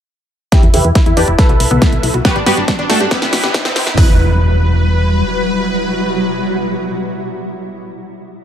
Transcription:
0.52 3.09 F#3 medium
0.52 0.62 E4 medium
0.52 0.61 E4 medium
0.52 3.09 F#4 medium
0.52 0.62 G4 medium
0.52 0.62 B4 medium
0.52 0.62 E5 loud
0.52 kick loud
0.52 snare soft
0.52 closed hi-hat medium
0.52 riser medium
0.63 0.70 E2 medium
0.63 0.73 E4 medium
0.63 closed hi-hat soft
0.74 0.81 E2 loud
0.74 0.83 E4 medium
0.74 0.83 G4 medium
0.74 0.80 A4 medium
0.74 0.83 B4 medium
0.74 0.83 E5 medium
0.74 open hi-hat loud
0.74 mid tom medium
0.84 0.92 E2 medium
0.84 0.94 E4 medium
0.84 0.88 B4 medium
0.84 closed hi-hat soft
0.95 1.05 E4 medium
0.95 1.01 E5 medium
0.95 kick loud
0.95 snare soft
0.95 closed hi-hat medium
1.06 1.13 E2 medium
1.06 1.16 E4 medium
1.06 1.15 E4 loud
1.06 closed hi-hat soft
1.17 1.24 E2 loud
1.17 1.27 D4 medium
1.17 1.26 E4 medium
1.17 1.27 G4 medium
1.17 1.27 B4 medium
1.17 1.27 D5 medium
1.17 open hi-hat medium
1.28 1.35 E1 medium
1.28 1.37 E4 medium
1.28 closed hi-hat soft
1.38 3.09 D3 medium
1.38 2.16 E4 medium
1.38 1.45 E4 medium
1.38 2.16 A4 medium
1.38 2.16 B4 medium
1.38 2.16 E5 loud
1.38 kick loud
1.38 snare medium
1.38 closed hi-hat medium
1.49 1.56 B1 medium
1.49 1.53 F#4 medium
1.49 closed hi-hat soft
1.60 1.67 B1 medium
1.60 1.66 B4 medium
1.60 open hi-hat loud
1.71 1.78 B1 loud
1.71 1.80 B3 loud
1.71 mid tom medium
1.82 1.91 B3 loud
1.82 kick loud
1.82 snare medium
1.82 closed hi-hat loud
1.92 1.99 B1 medium
1.92 closed hi-hat soft
2.03 2.10 B1 loud
2.03 2.09 E4 medium
2.03 open hi-hat medium
2.14 2.21 B1 medium
2.14 2.18 F#4 medium
2.14 closed hi-hat soft
2.25 2.34 B3 medium
2.25 2.34 F#4 medium
2.25 2.34 G4 medium
2.25 2.34 B4 loud
2.25 2.31 G5 medium
2.25 kick loud
2.25 snare medium
2.25 closed hi-hat loud
2.36 2.43 G1 medium
2.36 2.45 D4 medium
2.36 2.45 G4 loud
2.36 closed hi-hat soft
2.46 2.53 G1 loud
2.46 2.56 B3 medium
2.46 2.56 F#4 medium
2.46 2.56 G4 medium
2.46 2.55 G4 loud
2.46 2.56 B4 medium
2.46 snare medium
2.46 open hi-hat loud
2.57 2.64 G1 medium
2.57 2.67 D4 medium
2.57 closed hi-hat soft
2.68 2.78 D4 medium
2.68 2.74 B4 medium
2.68 kick loud
2.68 snare medium
2.68 closed hi-hat medium
2.79 2.86 G1 medium
2.79 2.89 D4 medium
2.79 2.82 D5 medium
2.79 closed hi-hat soft
2.90 2.97 G1 loud
2.90 2.99 A3 medium
2.90 2.99 D4 medium
2.90 2.99 F#4 medium
2.90 2.99 A4 medium
2.90 2.96 G5 medium
2.90 snare medium
2.90 open hi-hat medium
3.00 3.07 G2 medium
3.00 3.10 D4 medium
3.00 3.09 G4 loud
3.00 closed hi-hat soft
3.11 3.89 B3 medium
3.11 3.20 C4 loud
3.11 3.89 E4 medium
3.11 3.89 G4 medium
3.11 3.89 B4 loud
3.11 kick loud
3.11 snare medium
3.11 closed hi-hat medium
3.22 3.29 C2 medium
3.22 snare medium
3.22 closed hi-hat soft
3.33 3.40 C2 medium
3.33 3.39 F#4 medium
3.33 snare loud
3.33 open hi-hat loud
3.44 3.51 C2 loud
3.44 3.47 G4 medium
3.44 snare medium
3.44 closed hi-hat soft
3.54 3.60 C5 medium
3.54 kick loud
3.54 snare loud
3.54 closed hi-hat loud
3.65 3.72 C2 medium
3.65 3.74 C4 loud
3.65 snare medium
3.65 closed hi-hat soft
3.65 mid tom medium
3.76 3.83 C2 loud
3.76 3.85 C4 loud
3.76 snare loud
3.76 open hi-hat medium
3.87 3.94 C2 medium
3.87 snare medium
3.87 mid tom medium
3.97 5.23 E2 loud
3.97 7.90 B2 medium
3.97 7.90 F#3 medium
3.97 7.90 G3 medium
3.97 4.18 E4 medium
3.97 7.90 E4 medium
3.97 7.90 F#4 medium
3.97 7.90 B4 loud
3.97 kick loud
3.97 floor tom loud
3.97 open hi-hat medium
3.97 impact medium

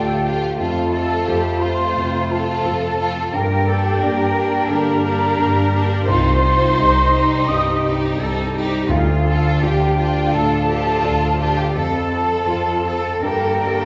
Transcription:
0.00 0.51 D2 medium
0.00 0.32 A2 soft
0.00 0.24 A3 medium
0.00 0.62 A3 soft
0.00 3.18 A3 medium
0.00 0.24 D4 medium
0.00 0.24 F4 soft
0.00 0.62 F4 soft
0.00 3.18 F4 medium
0.00 0.60 G4 medium
0.00 0.26 A4 medium
0.00 0.61 D5 soft
0.00 0.60 G5 medium
0.25 0.57 A3 medium
0.25 0.59 D4 medium
0.25 0.59 F4 medium
0.25 0.59 G4 medium
0.58 1.26 F2 medium
0.58 1.20 F2 medium
0.58 0.91 A3 soft
0.58 0.91 C4 soft
0.58 0.91 F4 medium
0.58 0.93 F4 medium
0.58 1.60 A4 medium
0.58 1.60 A5 medium
0.92 1.60 A3 medium
0.92 1.60 C4 soft
0.92 1.60 F4 medium
0.92 1.29 A4 medium
1.28 1.88 F2 medium
1.28 1.93 A3 soft
1.28 1.93 F4 soft
1.28 1.62 G4 medium
1.28 1.93 C5 soft
1.61 2.29 A3 medium
1.61 2.28 C4 medium
1.61 2.29 F4 medium
1.61 2.66 F4 medium
1.61 2.31 C5 medium
1.61 2.30 C6 medium
1.96 2.58 F2 medium
1.96 3.07 C3 soft
2.30 2.98 A3 medium
2.30 2.98 C4 medium
2.30 2.99 F4 medium
2.30 3.33 A4 medium
2.30 3.34 A5 medium
2.65 3.26 F2 medium
2.65 3.30 A3 soft
2.65 3.30 F4 soft
2.65 3.34 A4 medium
2.65 3.30 C5 soft
2.99 3.33 A3 medium
2.99 3.33 C4 medium
2.99 3.33 F4 medium
3.33 4.00 G2 medium
3.33 3.94 G2 medium
3.33 6.04 A#3 medium
3.33 6.04 D4 medium
3.33 4.70 G4 medium
3.33 3.68 A#4 medium
3.33 4.67 G5 medium
3.67 4.35 A#3 medium
3.67 4.35 D4 medium
3.67 4.03 A4 medium
4.02 4.62 G2 medium
4.02 4.66 A#3 medium
4.02 4.66 D4 soft
4.02 4.67 G4 medium
4.02 4.69 A#4 medium
4.36 5.02 A#3 medium
4.36 5.03 D4 medium
4.69 5.30 G2 medium
4.69 5.80 D3 medium
4.69 5.05 G4 medium
4.69 6.05 A#4 medium
4.69 5.80 A#5 loud
5.03 5.71 A#3 medium
5.03 5.72 D4 medium
5.03 6.07 G4 medium
5.38 6.00 G2 medium
5.38 6.05 A#3 soft
5.38 6.04 D4 soft
5.38 6.05 G4 medium
5.74 6.08 A#3 medium
5.74 6.08 D4 medium
6.07 6.76 C2 medium
6.07 6.71 C2 medium
6.07 6.43 G3 medium
6.07 8.86 G3 medium
6.07 6.43 C4 medium
6.07 6.43 D#4 medium
6.07 8.86 D#4 medium
6.07 6.79 F4 medium
6.07 7.48 C5 medium
6.07 7.45 C6 loud
6.44 7.12 G3 medium
6.44 7.13 C4 soft
6.44 7.12 D#4 medium
6.79 7.40 C2 medium
6.79 7.49 D#4 medium
6.79 7.45 D#4 medium
6.79 7.45 G4 medium
7.13 7.83 G3 medium
7.13 7.83 C4 medium
7.13 7.82 D#4 medium
7.48 8.11 C2 medium
7.48 8.61 G2 medium
7.48 8.19 G4 medium
7.48 7.84 D#5 medium
7.48 7.83 D#6 medium
7.84 8.54 G3 medium
7.84 8.54 C4 medium
7.84 8.53 D#4 medium
8.18 8.82 C2 medium
8.18 8.85 D#4 soft
8.18 8.85 G4 soft
8.18 8.55 A4 medium
8.55 8.90 G3 medium
8.55 8.90 C4 medium
8.55 8.89 D#4 medium
8.55 8.90 G4 medium
8.89 9.59 D2 medium
8.89 9.54 D2 medium
8.89 13.19 F3 medium
8.89 11.58 D4 medium
8.89 9.58 F4 medium
8.89 9.26 F4 medium
8.89 9.57 F5 medium
9.26 9.97 D4 medium
9.26 9.97 F4 medium
9.26 9.62 A4 medium
9.62 10.26 D2 medium
9.62 10.30 D4 soft
9.62 10.31 F4 medium
9.62 10.34 G4 medium
9.62 9.99 G4 medium
9.62 10.34 G5 medium
9.98 10.68 D4 medium
9.98 10.68 F4 medium
9.98 10.33 F4 medium
9.98 10.68 F4 medium
10.33 10.96 D2 medium
10.33 11.47 A2 medium
10.33 11.57 A4 medium
10.33 10.69 A4 medium
10.33 11.57 A5 loud
10.69 11.39 D4 medium
10.69 11.38 F4 medium
10.69 11.39 F4 medium
10.69 11.04 G4 medium
11.04 11.67 D2 medium
11.04 11.72 D4 soft
11.04 11.72 F4 soft
11.04 11.40 F4 medium
11.39 11.76 D4 medium
11.39 11.75 F4 medium
11.39 11.75 G4 medium
11.57 11.75 G4 medium
11.57 11.75 G5 medium
11.74 12.39 F2 medium
11.74 12.46 F2 medium
11.74 13.19 C4 medium
11.74 12.12 C4 medium
11.74 12.12 F4 soft
11.74 13.23 A4 medium
11.74 12.48 A4 medium
11.74 12.11 A4 medium
11.74 13.19 A5 medium
12.13 12.85 C4 soft
12.13 12.85 F4 soft
12.13 12.84 A4 medium
12.48 13.14 F2 medium
12.48 13.19 F4 soft
12.48 12.85 F4 medium
12.48 13.19 A4 medium
12.85 13.23 C4 medium
12.85 13.23 F4 soft
12.85 13.22 A4 soft
12.85 13.23 A4 medium
13.22 13.85 G2 medium
13.22 13.85 D3 medium
13.22 13.85 A#3 medium
13.22 13.61 A#3 medium
13.22 13.60 D4 medium
13.22 13.85 G4 medium
13.22 13.60 A4 soft
13.22 13.85 A#4 medium
13.22 13.85 G5 medium
13.61 13.85 A#3 medium
13.61 13.85 D4 medium
13.61 13.85 A4 medium

